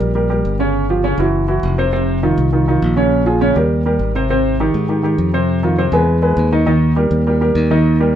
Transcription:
Already playing: grand piano A#4
0.00 fingered electric bass A#1
0.15 grand piano G3 G4 A#4
0.30 grand piano G3 G4 A#4
0.45 fingered electric bass G1
0.59 grand piano C#3 C#4 C#5
0.90 grand piano F3 F4 G4
1.04 grand piano C#3 C#4 C#5
1.18 fingered electric bass F#1, grand piano E3 E4 F#4
1.48 grand piano E3 E4 F#4
1.63 fingered electric bass F1
1.78 grand piano C3 C4 C5
1.92 grand piano C3 C4 C5
2.23 grand piano D#3 D#4 F4
2.38 fingered electric bass C2
2.53 grand piano D#3 D#4 F4
2.68 grand piano D#3 D#4 F4
2.82 fingered electric bass A#1
2.96 grand piano C#3 C#4 C#5
3.26 grand piano F3 F4 G#4
3.41 grand piano C#3 C#4 C#5
3.56 fingered electric bass D#2, grand piano G3 G4 A#4
3.86 grand piano G3 G4 A#4
3.99 fingered electric bass G#1
4.15 grand piano C3 C4 C5
4.30 grand piano C3 C4 C5
4.60 grand piano D#3 D#4 G4
4.74 fingered electric bass G#2
4.89 grand piano D#3 D#4 G4
5.03 grand piano D#3 D#4 G4
5.18 fingered electric bass F2
5.33 grand piano C3 C4 C5
5.63 grand piano D#3 D#4 F4
5.78 grand piano C3 C4 C5
5.92 fingered electric bass E2, grand piano G#3 G#4 B4
6.22 grand piano G#3 G#4 B4
6.37 fingered electric bass D#2
6.52 grand piano D#3 D#4 D#5
6.66 grand piano D#3 D#4 D#5
6.96 grand piano G3 G4 A#4
7.11 fingered electric bass D#2
7.27 grand piano G3 G4 A#4
7.41 grand piano G3 G4 A#4
7.55 fingered electric bass D#2
7.71 grand piano D#3 D#4 D#5
8.00 grand piano G3 G4 A#4

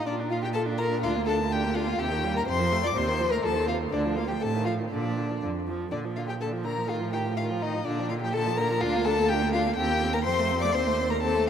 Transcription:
0.06 cello A#2, violin D4 D5, viola F4
0.20 viola D4
0.30 violin F4 F5, viola F4
0.42 viola D4, violin G4 G5
0.53 viola F4, violin A4 A5
0.66 viola D4
0.78 viola F4, violin A#4 A#5
0.91 viola D4
1.02 cello D2, viola D4, violin F4 F5
1.16 viola A#3
1.26 viola D4, violin A4 A5
1.41 viola A#3
1.50 viola D4, violin G4 G5
1.64 viola A#3
1.75 viola D4, violin F4 F5
1.88 viola A#3
1.99 cello D#2, viola C3, violin G4 G5
2.12 viola D#3
2.24 viola G3
2.36 viola A#3, violin A#4 A#5
2.47 cello F2, viola C3, violin C5 C6
2.61 viola F3
2.72 viola A3
2.83 viola F3, violin D5 D6
2.95 cello D#2, viola C3, violin C5 C6
3.08 viola D#3
3.20 viola F3
3.31 viola A3, violin A#4 A#5
3.42 cello D#2, viola F3, violin A4 A5
3.56 viola D#3
3.67 viola C3, violin F4 F5
3.80 viola D#3
3.91 cello D2, viola D3, violin D4 D5
4.05 viola F3
4.16 viola A#3, violin F4 F5
4.28 viola F3, violin G4 G5
4.40 cello A2, viola C3, violin A4 A5
4.55 viola D#3
4.64 viola F3, violin F4 F5
4.80 viola D#3
4.91 cello A#2, viola D3, violin D4 D5
5.05 viola F3
5.18 viola D3
5.30 viola F3
5.42 cello F2, viola D3
5.68 viola F3
5.91 cello A#2, viola D3, violin D4 D5
6.05 viola F3
6.16 viola D3, violin F4 F5
6.27 viola F3, violin G4 G5
6.41 viola D3, violin A4 A5
6.53 viola F3
6.64 viola D3, violin A#4 A#5
6.78 viola F3
6.89 cello A2, viola D#3, violin F4 F5
7.01 viola F3
7.13 viola D#3, violin G4 G5
7.26 viola F3
7.37 viola D#3, violin F4 F5
7.50 viola F3
7.61 viola D#3, violin D#4 D#5
7.74 viola F3
7.84 cello A#2, viola D3, violin D4 D5
7.99 viola F3
8.09 viola D3, violin F4 F5
8.21 viola F3, violin G4 G5
8.33 viola D3, violin A4 A5
8.47 viola F3
8.57 viola D3, violin A#4 A#5
8.71 viola F3
8.81 cello D2, viola D4, violin F4 F5
8.96 viola A#3
9.04 viola D4, violin A4 A5
9.19 viola A#3
9.28 viola D4, violin G4 G5
9.43 viola A#3
9.53 viola D4, violin F4 F5
9.67 viola A#3
9.76 cello D#2, viola C4, violin G4 G5
9.91 viola A#3
10.03 viola C4
10.13 viola A#3, violin A#4 A#5
10.24 cello F2, viola C4, violin C5 C6
10.39 viola A3
10.52 viola C4
10.61 viola A3, violin D5 D6
10.73 cello D#2, viola C4, violin C5 C6
10.87 viola A3
10.99 viola C4
11.10 viola A3, violin A#4 A#5
11.21 viola C4, violin A4 A5
11.36 viola A3

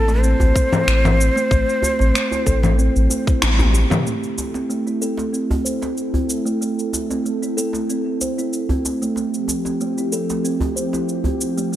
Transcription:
Already playing: analog synth bass A1, ney A4
0.08 kalimba A3, djembe slap, cabasa
0.21 kalimba C4, ney C5, cabasa
0.40 analog synth bass A1, djembe tone, djembe bass, cabasa
0.55 kalimba C5, kick, cabasa
0.72 kalimba E4, djembe slap, low conga, cabasa
0.87 analog synth bass A1, finger snap, cabasa
1.04 kalimba C4, low conga, cabasa
1.21 cabasa
1.36 kalimba A3, cabasa
1.51 analog synth bass A1, kalimba A3, kick, cabasa
1.69 cabasa
1.82 djembe tone, djembe bass, cabasa
1.99 analog synth bass A1, kalimba C4, djembe slap, cabasa
2.14 kalimba A3, finger snap, cabasa
2.31 kalimba E4, djembe tone, cabasa
2.46 analog synth bass A1, kalimba A4, kick, cabasa
2.63 kalimba A3, djembe slap, low conga, cabasa
2.78 kalimba C4, cabasa
2.96 analog synth bass A1, cabasa
3.10 kalimba A3, djembe tone, cabasa
3.27 kalimba E4, kick, cabasa
3.42 analog synth bass A1, finger snap, high tom, cabasa
3.59 kalimba G4, high tom, djembe bass, cabasa
3.73 kalimba G4, djembe tone, cabasa
3.90 kalimba G4, mid tom, low conga, cabasa
4.05 analog synth pad A3 E4 A4, kalimba A3, djembe slap, cabasa
4.23 cabasa
4.38 djembe tone, cabasa
4.54 kalimba C4, djembe slap, cabasa
4.69 kalimba A3, cabasa
4.87 kalimba E4, cabasa
5.02 kalimba A4, cabasa
5.18 kalimba A3, djembe slap, cabasa
5.33 kalimba C4, cabasa
5.51 djembe tone, djembe bass
5.65 kalimba C5, cabasa
5.82 kalimba E4, djembe slap, cabasa
5.97 cabasa
6.14 kalimba C4, djembe bass
6.29 cabasa
6.46 kalimba A3, cabasa
6.61 kalimba A3, cabasa
6.79 cabasa
6.93 djembe tone, cabasa
7.10 kalimba C4, djembe slap, cabasa
7.26 kalimba A3, cabasa
7.42 kalimba E4, cabasa
7.57 kalimba A4, cabasa
7.73 kalimba A3, djembe slap, cabasa
7.89 kalimba C4, cabasa
8.21 kalimba C5, djembe tone, cabasa
8.38 kalimba E4, cabasa
8.53 cabasa
8.69 kalimba C4, djembe bass
8.85 djembe tone, cabasa
9.02 kalimba A3, cabasa
9.16 analog synth pad F3 C4 G4, kalimba A3, djembe slap, cabasa
9.34 cabasa
9.48 djembe tone, cabasa
9.65 kalimba C4, djembe slap, cabasa
9.81 kalimba A3, cabasa
9.98 kalimba E4, cabasa
10.12 kalimba A4, cabasa
10.30 kalimba A3, djembe slap, cabasa
10.44 kalimba C4, cabasa
10.60 djembe tone, djembe bass
10.76 kalimba C5, cabasa
10.93 kalimba E4, djembe slap, cabasa
11.09 cabasa
11.24 kalimba C4, djembe bass
11.41 cabasa
11.57 kalimba A3, cabasa
11.71 kalimba A3, analog synth pad D4

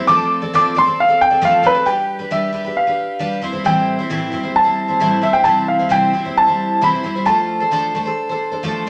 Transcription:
0.07 twelve-string acoustic guitar F3 A3 C4 A4 D5, grand piano D6
0.42 twelve-string acoustic guitar C4 A4 D5
0.53 twelve-string acoustic guitar F3 A3 C4 A4 D5, grand piano D6
0.75 twelve-string acoustic guitar A3 C4 A4 D5, grand piano C6
0.85 twelve-string acoustic guitar C4 A4 D5
1.00 grand piano F5
1.08 twelve-string acoustic guitar C4 A4 D5
1.21 grand piano G5
1.30 twelve-string acoustic guitar C4 A4 D5
1.41 twelve-string acoustic guitar F3 A3 C4 A4 D5, grand piano F5
1.63 twelve-string acoustic guitar A3 C4 A4 D5, grand piano B4
1.75 twelve-string acoustic guitar C4 A4 D5
1.86 twelve-string acoustic guitar G3 D4 G4 B4, grand piano G5
2.19 twelve-string acoustic guitar D4 G4 B4
2.31 twelve-string acoustic guitar G3 D4 G4 B4, grand piano E5
2.52 twelve-string acoustic guitar G3 D4 G4 B4
2.65 twelve-string acoustic guitar D4 G4 B4
2.77 grand piano F5
2.87 twelve-string acoustic guitar D4 G4 B4
3.19 twelve-string acoustic guitar G3 D4 G4 B4
3.41 twelve-string acoustic guitar G3 C4 E4 C5
3.52 twelve-string acoustic guitar G3 C4 E4 C5
3.64 twelve-string acoustic guitar A2 E3 G3 C4 E4 C5, grand piano G5
3.99 twelve-string acoustic guitar G3 C4 E4 C5
4.10 twelve-string acoustic guitar A2 E3 G3 C4 E4 C5
4.32 twelve-string acoustic guitar G3 C4 E4 C5
4.43 twelve-string acoustic guitar G3 C4 E4 C5
4.56 grand piano A5
4.64 twelve-string acoustic guitar G3 C4 E4 C5
4.88 twelve-string acoustic guitar G3 C4 E4 C5
5.00 twelve-string acoustic guitar A2 E3 G3 C4 E4 C5
5.21 twelve-string acoustic guitar G3 C4 E4 C5, grand piano E5
5.33 twelve-string acoustic guitar G3 C4 E4 C5, grand piano G5
5.44 twelve-string acoustic guitar C3 E3 G3 C4 E4 C5, grand piano A5
5.68 grand piano F5
5.79 twelve-string acoustic guitar G3 C4 E4 C5
5.89 twelve-string acoustic guitar C3 E3 G3 C4 E4 C5, grand piano G5
6.13 twelve-string acoustic guitar G3 C4 E4 C5
6.25 twelve-string acoustic guitar G3 C4 E4 C5
6.37 grand piano A5
6.47 twelve-string acoustic guitar G3 C4 E4 C5
6.81 twelve-string acoustic guitar C3 E3 G3 C4 E4 C5, grand piano B5
7.03 twelve-string acoustic guitar G3 C4 E4 C5
7.15 twelve-string acoustic guitar G3 C4 E4 C5
7.25 twelve-string acoustic guitar F3 A3 D4 A4 C5, grand piano A5
7.60 twelve-string acoustic guitar D4 A4 C5
7.71 twelve-string acoustic guitar F3 A3 D4 A4 C5
7.95 twelve-string acoustic guitar A3 D4 A4 C5
8.06 twelve-string acoustic guitar D4 A4 C5
8.29 twelve-string acoustic guitar D4 A4 C5
8.52 twelve-string acoustic guitar D4 A4 C5
8.63 twelve-string acoustic guitar F3 A3 D4 A4 C5

